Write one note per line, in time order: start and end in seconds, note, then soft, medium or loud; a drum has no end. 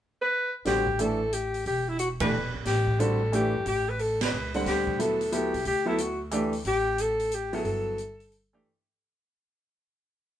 0.22 0.52 B4 loud
0.65 1.62 A1 medium
0.65 0.85 D3 medium
0.65 0.85 G3 soft
0.65 0.85 C4 soft
0.65 0.85 F#4 medium
0.65 1.02 G4 medium
0.65 snare soft
0.65 open hi-hat soft
0.87 kick soft
0.99 1.18 E3 medium
0.99 1.19 A3 medium
0.99 1.19 D4 soft
0.99 1.19 E4 medium
0.99 1.35 A4 medium
0.99 closed hi-hat soft
1.33 1.66 G4 medium
1.33 closed hi-hat soft
1.54 open hi-hat soft
1.66 2.50 E1 medium
1.66 1.90 G4 medium
1.66 open hi-hat soft
1.89 1.99 E4 medium
1.99 2.09 F#4 medium
1.99 closed hi-hat soft
2.20 2.31 E3 medium
2.20 2.31 A3 medium
2.20 2.32 D4 medium
2.20 2.32 G4 medium
2.20 2.52 B4 medium
2.20 kick medium
2.20 ride medium
2.54 2.65 A#1 medium
2.65 3.50 A1 medium
2.65 3.01 G4 medium
2.65 snare soft
2.65 open hi-hat soft
2.87 kick soft
2.99 3.19 D3 medium
2.99 3.19 G3 medium
2.99 3.19 C4 medium
2.99 3.19 F#4 medium
2.99 3.33 A4 medium
2.99 closed hi-hat soft
3.32 3.52 E3 medium
3.32 3.52 A3 medium
3.32 3.52 D4 medium
3.32 3.53 G4 medium
3.32 3.65 G4 medium
3.32 closed hi-hat soft
3.54 3.65 G1 medium
3.66 4.29 A1 medium
3.66 3.91 G4 medium
3.66 open hi-hat soft
3.89 4.02 B4 medium
3.99 4.24 A4 medium
3.99 open hi-hat soft
4.21 4.55 B4 medium
4.21 snare medium
4.21 ride medium
4.32 4.63 C#2 medium
4.54 4.97 D3 medium
4.54 4.97 G3 medium
4.54 4.97 C4 medium
4.54 4.98 F#5 medium
4.54 open hi-hat soft
4.66 5.50 D2 medium
4.66 5.02 G4 medium
4.66 snare soft
4.66 open hi-hat soft
4.87 kick medium
4.99 5.18 F#3 medium
4.99 5.18 B3 soft
4.99 5.19 E4 soft
4.99 5.35 A4 medium
4.99 5.19 A4 medium
4.99 closed hi-hat soft
5.21 open hi-hat soft
5.32 5.51 F#3 medium
5.32 5.52 B3 medium
5.32 5.52 E4 medium
5.32 5.66 G4 medium
5.32 5.52 A4 medium
5.32 closed hi-hat soft
5.53 5.65 C2 medium
5.53 open hi-hat soft
5.65 6.61 D2 medium
5.65 5.86 G4 medium
5.65 open hi-hat soft
5.86 5.97 F#3 medium
5.86 5.97 B3 medium
5.86 5.97 E4 medium
5.86 6.02 E4 medium
5.86 5.98 A4 medium
5.98 6.21 F#4 medium
5.98 closed hi-hat soft
6.31 6.51 E3 medium
6.31 6.51 A3 medium
6.31 6.52 D4 medium
6.31 6.52 G4 medium
6.31 closed hi-hat medium
6.53 open hi-hat soft
6.65 7.61 A1 medium
6.65 7.02 G4 medium
6.65 open hi-hat soft
6.98 7.36 A4 medium
6.98 closed hi-hat soft
7.20 open hi-hat soft
7.32 7.54 G4 medium
7.32 closed hi-hat soft
7.53 7.96 F#3 medium
7.53 7.96 B3 medium
7.53 7.96 E4 medium
7.53 7.97 A4 medium
7.53 8.50 A4 medium
7.53 open hi-hat soft
7.65 8.61 G1 medium
7.65 open hi-hat soft
7.98 closed hi-hat soft
8.20 open hi-hat soft
8.32 open hi-hat soft
8.53 8.65 E3 medium
8.53 8.65 A3 medium
8.53 8.65 D4 medium
8.53 8.66 G4 medium